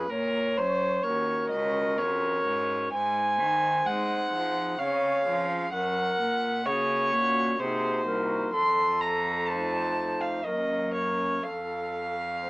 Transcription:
Already playing: B4
0.10 A#2 A#4 C#5
0.57 F#2 C5
1.03 D#2 C#4 F#4 A#4 C#5
1.50 C#2 D#5
1.98 F2 C#4 F#4 C#5
2.45 G#2
2.93 G#2 C5 G#5
3.40 D#3
3.86 G#3 C4 D#4 G#4 F#5
4.33 F3
4.79 C#3 C4 C#4 G#4 C#5 F5
5.27 F3
5.73 F#2 A#4 F#5
6.20 A#2
6.66 C#3 A#3 C#4 F#4 G#4 C#5
7.12 A#2 F#4
7.59 C3 A#3 D#4 F#4 G#4 C5
8.06 C2 A#4
8.53 F2 A4 C6
9.01 A#5
9.48 A3 D#4 F4 C5 A5
10.21 F5
10.45 F#2 A#3 C#4 A#4 D#5
10.94 C#5
11.43 F2 A4 F5
12.42 A3 C4 C5

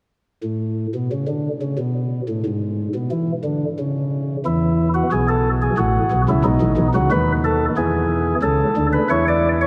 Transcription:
0.43 A2
0.94 B2
1.12 C#3
1.27 D3
1.61 C#3
1.78 B2
2.28 A2
2.45 G#2
2.95 B2
3.11 E3
3.44 D3
3.79 C#3
4.45 E2 E3 E4
4.94 F#4
5.12 B1 B2 G#4
5.28 A4
5.62 G#4
5.78 A1 A2 F#4
6.12 B1 B2
6.29 C#2 C#3 E4
6.44 B1 B2 D#4
6.61 A1 A2
6.77 B1 B2
6.95 C#2 C#3 F#4
7.11 D#2 D#3 B4
7.44 A4
7.77 E2 E3 G#4
8.42 C#2 C#3 A4
8.77 D2 D3
8.93 B4
9.10 E2 E3 E4 C#5
9.28 D5
9.61 C#5

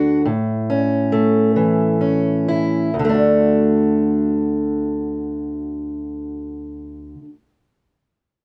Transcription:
Already playing: D2 D3 A3 D4 F#4
0.25 A2
0.70 C#4
1.12 A3
1.56 E3
2.01 C#4
2.48 E4
2.94 D2
2.99 D3
3.05 A3
3.09 D4
3.14 F#4

